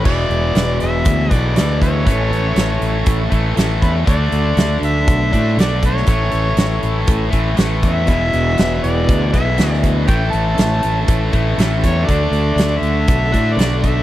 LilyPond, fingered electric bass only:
\new Staff \with { instrumentName = "Fingered electric bass" } { \clef bass \time 4/4 \key e \mixolydian \tempo 4 = 120 e,,8 e,,8 e,,8 e,,8 d,8 b,,8 d,4 | a,,8 a,,8 a,,8 a,,8 a,,8 a,,8 a,,8 e,8 | d,8 d,8 d,8 d,8 b,,8 a,8 b,,4 | a,,8 a,,8 a,,8 a,,8 a,,8 a,,8 a,,8 e,8 |
e,,8 e,,8 e,,8 e,,8 d,8 b,,8 d,4 | a,,8 a,,8 a,,8 a,,8 a,,8 a,,8 a,,8 e,8 | d,8 d,8 d,8 d,8 b,,8 a,8 b,,4 | }